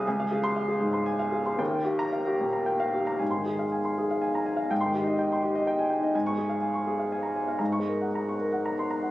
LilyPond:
<<
  \new Staff \with { instrumentName = "Upright piano" } { \time 3/4 \key aes \major \tempo 4 = 118 << { r8. c'''8 r4. r16 | r8. bes''8 r4. r16 | r16 c'''8 r2 r16 | r16 c'''8 r2 r16 |
r16 des'''8 r2 r16 | r16 des'''8 r2 r16 | } \\ { aes''16 f''16 aes'8 f''16 aes'16 aes,16 c'''16 aes''16 f''16 aes'16 c'''16 | g''16 f''16 g'8 f''16 g'16 bes,16 bes''16 g''16 f''16 g'16 bes''16 | aes''8 aes'16 f''16 aes''16 c'''16 aes'16 f''16 aes''16 bes''16 aes''16 f''16 | g''8 g'16 ees''16 g''16 c'''16 g'16 ees''16 g''16 aes''16 g''16 ees''16 |
aes''8 aes'16 f''16 aes''16 des'''16 aes'16 f''16 aes''16 bes''16 aes''16 f''16 | bes''8 bes'16 ges''16 bes''16 des'''16 bes'16 ges''16 bes''16 c'''16 bes''16 ges''16 | } >> }
  \new Staff \with { instrumentName = "Upright piano" } { \clef bass \time 3/4 \key aes \major des,2. | ees,2. | \tuplet 3/2 { aes,8 ees4 } r2 | \tuplet 3/2 { aes,8 ees8 ees'8 } r4 \tuplet 3/2 { r4 ees'8 } |
\tuplet 3/2 { aes,8 aes4 } r2 | \tuplet 3/2 { aes,8 aes4 } r2 | }
>>